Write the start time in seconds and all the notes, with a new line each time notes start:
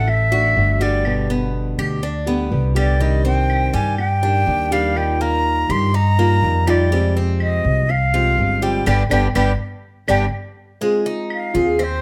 Already playing: A1 A3 F#5
0.07 E5, muted nylon-string guitar stroke, claves
0.32 A3 D4 F#4
0.56 G1 D3 A3 D4 F#4
0.80 G3 A3 D4 F#4 D5
1.05 B2 D3 G3 B3 G4, claves
1.30 B3
1.78 D2 G4, claves
2.03 D4, muted nylon-string guitar stroke
2.26 D3 G3 B3 G4
2.51 C2 D3 G3 B3 G4
2.75 D3 G3 B3 G4 D5, claves
2.99 C3 D#3 G3 D4 G4 D#5
3.25 C4 G5
3.50 claves
3.74 G2 G3 G#5
3.98 G5, muted nylon-string guitar stroke, claves
4.23 D#3 G3 D4 G4
4.47 D#2 D#3 G3 D4 G4
4.71 D#3 G3 D4 G4 F5
4.95 D#3 G3 D#4 F4 G5, claves
5.21 A#3 A#5
5.69 G2 G4 C6, claves
5.94 D#4 A#5, muted nylon-string guitar stroke
6.18 G3 A#3 D#4 F4
6.43 F2 D#3 G3 D#4 F4
6.67 G3 D#4 F4 D5, claves
6.92 C3 F3 G3 G#3 C4 G4
7.17 C4
7.40 D#5, claves
7.64 C2
7.89 F5, muted nylon-string guitar stroke, claves
8.14 F3 G#3 C4 F4 G4
8.38 G1 F3 G#3 C4 G4
8.62 F3 G3 G#3 C4 G4 G5
8.86 G1 D3 G3 B3 D4 G5, claves
9.10 G1 D3 G3 B3 D4 G5, claves
9.35 G1 D3 G3 B3 D4 G5, claves
10.08 G1 D3 G3 B3 D4 G5, claves
10.81 G#3 C4 F4
11.06 D#4
11.30 F5, claves
11.54 D#2 C4 F4 G#4
11.79 C4, muted nylon-string guitar stroke, claves
11.84 C5